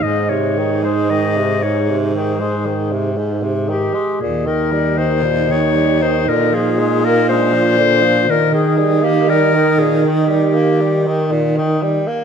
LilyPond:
<<
  \new Staff \with { instrumentName = "Clarinet" } { \time 4/4 \key aes \major \tempo 4 = 59 ees''16 des''8 c''16 ees''8 des''16 r16 c''4 r8 g'8 | aes'16 bes'8 c''8 des''8 c''16 bes'16 aes'8 bes'16 c''4 | bes'16 aes'8 g'16 bes'8 aes'16 r16 g'4 r4 | }
  \new Staff \with { instrumentName = "Alto saxophone" } { \time 4/4 \key aes \major ees'2.~ ees'8. r16 | ees'2. d'4 | ees'2.~ ees'8. r16 | }
  \new Staff \with { instrumentName = "Tenor saxophone" } { \clef bass \time 4/4 \key aes \major aes,16 c16 ees16 aes16 ees16 c16 aes,16 c16 ees16 aes16 ees16 c16 aes,16 c16 ees16 aes16 | bes,16 ees16 g16 ees16 bes,16 ees16 g16 ees16 d16 f16 aes16 bes16 aes16 f16 d16 f16 | bes,16 ees16 g16 bes16 g16 ees16 bes,16 ees16 g16 bes16 g16 ees16 bes,16 ees16 g16 bes16 | }
  \new Staff \with { instrumentName = "Baritone saxophone" } { \clef bass \time 4/4 \key aes \major aes,2.~ aes,8. r16 | ees,2 bes,2 | ees2.~ ees8. r16 | }
>>